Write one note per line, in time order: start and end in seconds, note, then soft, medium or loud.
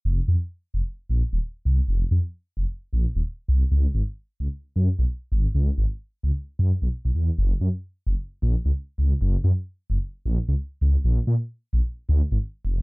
0.05 0.20 F1 medium
0.28 0.36 F2 medium
0.74 0.82 F1 medium
1.09 1.22 A#1 medium
1.32 1.39 D#1 medium
1.65 1.80 C2 medium
1.88 2.03 F1 loud
2.11 2.19 F2 medium
2.57 2.65 F1 medium
2.93 3.06 A#1 medium
3.16 3.22 D#1 medium
3.48 3.64 C2 medium
3.71 3.86 C#2 loud
3.94 4.02 G#1 medium
4.40 4.48 C#2 medium
4.76 4.89 F#2 medium
4.99 5.05 B1 medium
5.32 5.47 G#1 medium
5.55 5.70 C#2 loud
5.78 5.85 G#1 medium
6.23 6.31 C#2 medium
6.59 6.72 F#2 medium
6.82 6.88 B1 medium
7.05 7.11 B1 medium
7.15 7.30 E2 medium
7.38 7.53 F#1 loud
7.61 7.69 F#2 medium
8.07 8.14 F#1 medium
8.42 8.55 A#1 medium
8.65 8.71 C#2 medium
8.98 9.13 C#2 medium
9.21 9.36 F#1 loud
9.44 9.52 F#2 medium
9.90 9.98 F#1 medium
10.26 10.38 A#1 medium
10.48 10.55 C#2 medium
10.81 10.96 C#2 medium
11.04 11.19 A#1 loud
11.27 11.35 A#2 medium
11.73 11.81 A#1 medium
12.09 12.22 D2 medium
12.32 12.38 G#1 medium
12.65 12.80 F1 medium